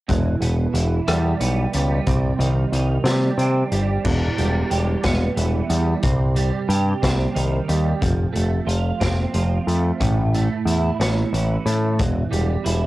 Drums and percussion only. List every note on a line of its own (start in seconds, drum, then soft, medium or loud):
0.09 kick medium
0.09 closed hi-hat medium
0.42 closed hi-hat medium
0.75 closed hi-hat medium
1.08 cross-stick medium
1.08 closed hi-hat medium
1.41 closed hi-hat medium
1.73 closed hi-hat medium
2.07 kick medium
2.07 closed hi-hat medium
2.40 closed hi-hat medium
2.73 closed hi-hat medium
3.05 snare medium
3.05 closed hi-hat medium
3.39 closed hi-hat medium
3.72 closed hi-hat soft
4.05 kick loud
4.05 crash medium
4.38 closed hi-hat medium
4.71 closed hi-hat medium
5.04 kick medium
5.04 snare loud
5.04 closed hi-hat medium
5.37 closed hi-hat medium
5.70 closed hi-hat medium
6.03 kick loud
6.03 closed hi-hat medium
6.36 closed hi-hat medium
6.70 closed hi-hat medium
7.03 kick medium
7.03 snare loud
7.03 closed hi-hat medium
7.36 closed hi-hat medium
7.69 closed hi-hat medium
8.02 kick medium
8.02 closed hi-hat medium
8.36 closed hi-hat soft
8.69 closed hi-hat medium
9.01 kick medium
9.01 snare medium
9.01 closed hi-hat medium
9.34 closed hi-hat medium
9.68 closed hi-hat soft
10.01 kick loud
10.01 closed hi-hat medium
10.35 closed hi-hat soft
10.67 closed hi-hat medium
11.01 snare loud
11.01 closed hi-hat medium
11.34 closed hi-hat medium
11.67 closed hi-hat medium
11.99 kick loud
11.99 closed hi-hat medium
12.33 closed hi-hat medium
12.66 closed hi-hat medium